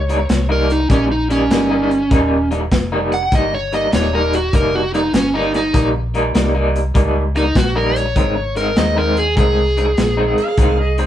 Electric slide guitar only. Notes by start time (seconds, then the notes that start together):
Already playing: C#5
0.52 A#4
0.72 D#4
0.91 C#4
1.12 D#4
1.31 C#4
3.14 F#5
3.35 D#5
3.54 C#5
3.74 D#5
3.94 C#5
4.15 A#4
4.35 F#4
4.55 A#4
4.75 F#4
4.95 D#4
5.16 C#4
5.35 D#4
5.56 D#4
7.37 D#4
7.57 F#4
7.77 A#4
7.96 C#5
8.57 A#4
8.78 D#5
8.98 A#4
9.18 G#4
9.38 G#4